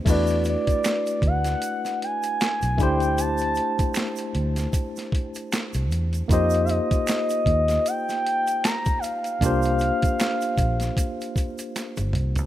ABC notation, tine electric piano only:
X:1
M:4/4
L:1/8
Q:"Swing 16ths" 1/4=77
K:Ephr
V:1 name="Tine electric piano"
[A,DE^FB]6- [A,DEFB] [A,DEGc]- | [A,DEGc]6- [A,DEGc] z | [_B,_EFGc]8 | [_B,DFGc]8 |]